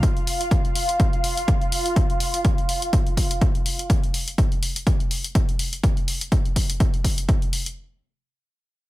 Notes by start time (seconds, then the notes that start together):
0.03 F4 F5, kick, closed hi-hat
0.17 closed hi-hat
0.27 open hi-hat
0.41 closed hi-hat
0.51 kick, closed hi-hat
0.65 closed hi-hat
0.75 open hi-hat
0.89 closed hi-hat
1.00 kick, closed hi-hat
1.13 closed hi-hat
1.24 open hi-hat
1.37 closed hi-hat
1.48 kick, closed hi-hat
1.61 closed hi-hat
1.72 open hi-hat
1.86 closed hi-hat
1.96 kick, closed hi-hat
2.10 closed hi-hat
2.20 open hi-hat
2.34 closed hi-hat
2.45 kick, closed hi-hat
2.58 closed hi-hat
2.69 open hi-hat
2.82 closed hi-hat
2.93 kick, closed hi-hat
3.07 closed hi-hat
3.17 kick, open hi-hat
3.31 closed hi-hat
3.41 kick, closed hi-hat
3.55 closed hi-hat
3.66 open hi-hat
3.79 closed hi-hat
3.90 kick, closed hi-hat
4.03 closed hi-hat
4.14 open hi-hat
4.28 closed hi-hat
4.38 kick, closed hi-hat
4.52 closed hi-hat
4.63 open hi-hat
4.76 closed hi-hat
4.87 kick, closed hi-hat
5.00 closed hi-hat
5.11 open hi-hat
5.24 closed hi-hat
5.35 kick, closed hi-hat
5.49 closed hi-hat
5.59 open hi-hat
5.73 closed hi-hat
5.83 kick, closed hi-hat
5.97 closed hi-hat
6.08 open hi-hat
6.21 closed hi-hat
6.32 kick, closed hi-hat
6.46 closed hi-hat
6.56 kick, open hi-hat
6.70 closed hi-hat
6.80 kick, closed hi-hat
6.94 closed hi-hat
7.04 kick, open hi-hat
7.18 closed hi-hat
7.29 kick, closed hi-hat
7.42 closed hi-hat
7.53 open hi-hat
7.66 closed hi-hat